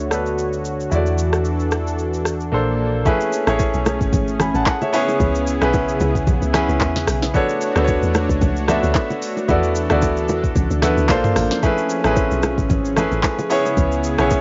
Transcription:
Already playing: fingered electric bass D2, analog synth pad D3 A3 F#4 C#5, grand piano B3 D4 A4 C#5
0.10 grand piano B3 D4 A4 B4, cross-stick, shaker
0.26 shaker
0.38 shaker
0.53 shaker
0.65 shaker
0.80 shaker
0.90 fingered electric bass E2, analog synth pad E3 D4 A4, grand piano G#3 E4 F#4, shaker
0.95 grand piano A3 D5
1.06 shaker
1.18 shaker
1.33 cross-stick, shaker
1.45 shaker
1.60 shaker
1.72 cross-stick, shaker
1.87 shaker
1.99 shaker
2.14 shaker
2.25 cross-stick, shaker
2.40 shaker
2.52 fingered electric bass A#1, grand piano A#3 D4 A4 C5, analog synth pad A#3 A4
3.05 grand piano A3 C#4 E4 G#4 B4, analog synth pad A3 C#4 G#4, kick, low conga, shaker
3.21 shaker
3.33 shaker
3.47 log drum bass A1, grand piano A3 C#4 E4 G#4 C#5, cross-stick, shaker
3.59 kick, high bongo, shaker
3.74 log drum bass B1, shaker
3.86 cross-stick, high bongo, low bongo, shaker
4.01 log drum bass G#1, kick, shaker
4.13 log drum bass G#1, kick, low conga, shaker
4.28 shaker
4.40 grand piano G#5 B5, cross-stick, low bongo, low conga, shaker
4.55 log drum bass A1, grand piano F#5 A5, shaker
4.66 grand piano F#5, kick, clap, high bongo, shaker
4.82 grand piano C#5 E5, low bongo, shaker
4.93 analog synth pad C#3 B3 E4, grand piano B3 C#4 E4 G#4 C#5, open hi-hat, shaker
5.08 high bongo, shaker
5.20 log drum bass C#2, kick, low conga, shaker
5.35 shaker
5.47 shaker
5.61 log drum bass B1, grand piano B3 C#4 E4 G#4 B4, cross-stick, shaker
5.74 kick, high bongo, shaker
5.89 shaker
6.00 log drum bass C#2, high bongo, low bongo, shaker
6.15 kick, shaker
6.27 log drum bass B1, kick, low conga, shaker
6.42 log drum bass C#2, shaker
6.53 grand piano B3 C#4 E4 G#4 B4, cross-stick, snare, low bongo, low conga, shaker
6.69 log drum bass C#2, shaker
6.81 log drum bass E2, kick, clap, high bongo, shaker
6.96 snare, low bongo, shaker
7.07 log drum bass B1, cross-stick, open hi-hat, shaker
7.22 snare, high bongo, shaker
7.34 analog synth pad A3 D4 F#4 C#5, grand piano B3 D4 F#4 A4 C#5, kick, low conga, shaker
7.49 shaker
7.61 shaker
7.75 log drum bass D2, grand piano B3 D4 F#4 A4 B4, cross-stick, shaker
7.84 grand piano C#5, kick, high bongo, shaker
8.03 log drum bass E2, shaker
8.14 cross-stick, high bongo, low bongo, shaker
8.29 log drum bass C#2, kick, shaker
8.41 log drum bass C#2, kick, low conga, shaker
8.56 shaker
8.68 grand piano B3 D4 F#4 A4 E5, cross-stick, low bongo, low conga, shaker
8.83 log drum bass D2, shaker
8.95 kick, clap, high bongo, shaker
9.10 low bongo, shaker
9.22 open hi-hat, shaker
9.37 high bongo, shaker
9.48 log drum bass E2, analog synth pad E3 D4 A4, grand piano B3 E4 F#4 A4 D5, kick, low conga, shaker
9.63 shaker
9.75 shaker
9.89 log drum bass D2, grand piano B3 E4 F#4 A4 D5, cross-stick, low bongo, shaker
10.02 kick, high bongo, shaker
10.17 shaker
10.28 log drum bass E2, high bongo, low bongo, shaker
10.44 kick, shaker
10.56 log drum bass C#2, kick, low conga, shaker
10.71 log drum bass D2, shaker
10.82 grand piano B3 E4 F#4 A4 B4, cross-stick, snare, low bongo, low conga, shaker
10.97 log drum bass D2, shaker
11.09 log drum bass A#1, analog synth pad F3 A#3, grand piano A#3 D4 F4 A4 C5, kick, clap, high bongo, shaker
11.24 mid tom, low bongo, shaker
11.36 log drum bass A1, cross-stick, open hi-hat, shaker
11.51 snare, high bongo, shaker
11.62 grand piano A3 C#4 E4 G#4 B4, analog synth pad C#4 G#4, kick, low conga, shaker
11.78 shaker
11.90 shaker
12.04 log drum bass A1, grand piano A3 C4 E4 G#4 B4, cross-stick, shaker
12.11 grand piano C#4
12.16 kick, high bongo, shaker
12.31 log drum bass B1, shaker
12.43 cross-stick, high bongo, low bongo, shaker
12.58 log drum bass G#1, kick, shaker
12.70 log drum bass G#1, kick, low conga, shaker
12.85 shaker
12.96 grand piano A3 C#4 E4 G#4 B4, cross-stick, low bongo, low conga, shaker
13.12 log drum bass A1, shaker
13.23 kick, clap, high bongo, shaker
13.39 low bongo, shaker
13.50 analog synth pad C#3 B3 E4, grand piano B3 C#4 E4 G#4 C#5, open hi-hat, shaker
13.65 high bongo, shaker
13.77 log drum bass C#2, kick, low conga, shaker
13.92 shaker
14.04 shaker
14.18 log drum bass B1, grand piano B3 C#4 E4 G#4 C#5, cross-stick, shaker
14.31 kick, high bongo, shaker

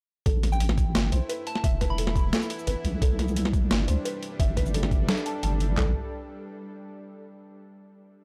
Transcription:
0.26 wobble bass A1, synth drone A3 E4, felt piano A4, kick, closed hi-hat
0.43 snare, closed hi-hat
0.52 synth bell G5, shaker
0.60 closed hi-hat
0.69 snare
0.78 kick, closed hi-hat, shaker
0.95 wobble bass G1, snare, closed hi-hat
1.12 wobble bass B1, felt piano C5, closed hi-hat, shaker
1.29 felt piano B4, closed hi-hat
1.47 synth bell A5, closed hi-hat
1.55 synth bell A5, snare
1.64 wobble bass E1, synth drone E3 B3 E4, felt piano E5, kick, closed hi-hat
1.81 felt piano B4, kick, snare, closed hi-hat
1.90 synth bell B5
1.98 felt piano A4, closed hi-hat
2.07 snare
2.16 kick, closed hi-hat, shaker
2.33 felt piano A4, snare, closed hi-hat
2.42 shaker
2.50 closed hi-hat
2.59 shaker
2.67 wobble bass G1, felt piano B4, closed hi-hat
2.84 wobble bass B1, closed hi-hat
3.02 wobble bass C2, synth drone C3 G3 D4, felt piano A4, kick, closed hi-hat
3.19 snare, closed hi-hat
3.28 shaker
3.36 closed hi-hat
3.45 snare
3.53 kick, closed hi-hat, shaker
3.71 wobble bass G1, snare, closed hi-hat
3.88 wobble bass D2, felt piano C5, closed hi-hat, shaker
4.05 felt piano B4, closed hi-hat
4.23 closed hi-hat
4.39 wobble bass G1, synth drone D4 A4, felt piano E5, kick, closed hi-hat
4.57 felt piano B4, kick, snare, closed hi-hat
4.66 shaker
4.74 felt piano A4, closed hi-hat
4.83 snare
4.91 kick, closed hi-hat, shaker
5.09 felt piano A4, snare, closed hi-hat
5.17 shaker
5.26 felt piano A5, closed hi-hat
5.43 wobble bass G1, felt piano A5, closed hi-hat
5.60 closed hi-hat
5.77 wobble bass A1, felt piano A4, snare, clap, floor tom

